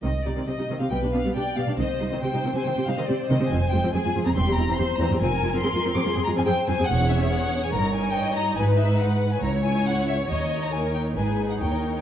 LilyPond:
<<
  \new Staff \with { instrumentName = "Violin section" } { \time 4/4 \key c \minor \tempo 4 = 141 ees''8 d''8 ees''8. f''16 g''8 f''8 g''8 f''8 | ees''4 g''8. aes''16 g''8 f''16 ees''16 d''8 ees''8 | aes''8 g''8 aes''8. bes''16 c'''8 bes''8 c'''8 bes''8 | aes''4 c'''8. d'''16 c'''8 bes''16 aes''16 g''8 aes''8 |
\key gis \minor fis''8 e''8 fis''8. gis''16 ais''8 gis''8 g''8 ais''8 | gis''8 e''8 fis''8. gis''16 ais''8 gis''8 fis''8 e''8 | dis''8. ais''16 gis''8 g''8 gis''8. fis''16 g''8. g''16 | }
  \new Staff \with { instrumentName = "Violin section" } { \time 4/4 \key c \minor r2 b'4 d''4 | c''1~ | c''4 aes'4 g'4 c''4 | bes'2 aes'4 c''4 |
\key gis \minor cis''2 ais'4 dis''4 | b'2 cis''2~ | cis''4 ais'4 gis'4 ais'4 | }
  \new Staff \with { instrumentName = "Viola section" } { \time 4/4 \key c \minor << { c'16 r16 ees'16 c'16 g'16 ees'16 c'16 g'16 b16 g'16 d'16 b16 g'16 r16 b16 g'16 | c'16 r16 ees'16 c'16 g'16 ees'16 c'16 g'16 c'16 g'16 ees'16 c'16 g'16 r16 c'16 g'16 | c'16 r16 f'16 c'16 aes'16 f'16 c'16 aes'16 c'16 g'16 e'16 c'16 g'16 r16 c'16 g'16 | c'16 r16 f'16 c'16 aes'16 f'16 c'16 aes'16 c'16 aes'16 f'16 c'16 aes'16 r16 c'16 aes'16 |
\key gis \minor gis'2 cis''2 | b'2 cis''2~ | cis''2 b'4 cis''4 | } \\ { ees16 r16 g16 ees16 c'16 g16 ees16 c'16 g16 d'16 b16 g16 d'16 r16 g16 d'16 | ees16 r16 g16 ees16 c'16 g16 ees16 c'16 ees16 c'16 g16 ees16 c'16 r16 ees16 c'16 | f16 r16 aes16 f16 c'16 aes16 f16 c'16 e16 c'16 g16 e16 c'16 r16 e16 c'16 | f16 r16 aes16 f16 c'16 aes16 f16 c'16 f16 c'16 aes16 f16 c'16 r16 f16 c'16 |
cis'2 dis'2~ | dis'2 e'2 | dis'1 | } >> }
  \new Staff \with { instrumentName = "Cello section" } { \clef bass \time 4/4 \key c \minor c16 r16 c16 c16 c16 c16 c16 c16 b,16 b,16 b,16 b,16 b,16 r16 b,16 b,16 | c16 r16 c16 c16 c16 c16 c16 c16 c16 c16 c16 c16 c16 r16 c16 c16 | f,16 r16 f,16 f,16 f,16 f,16 f,16 f,16 e,16 e,16 e,16 e,16 e,16 r16 e,16 e,16 | f,16 r16 f,16 f,16 f,16 f,16 f,16 f,16 f,16 f,16 f,16 f,16 f,16 r16 f,16 f,16 |
\key gis \minor e,2 g,2 | gis,2 cis,2 | dis,2 gis,4 dis,4 | }
  \new Staff \with { instrumentName = "Double bass section" } { \clef bass \time 4/4 \key c \minor c,16 r4. r16 b,,16 r4. r16 | c,16 r2. r8. | f,,16 r4. r16 e,,16 r4. r16 | f,,16 r2. r8. |
\key gis \minor e,,4 r4 g,,4 r4 | gis,,4 r4 cis,4 r4 | dis,4 r4 gis,,4 dis,4 | }
>>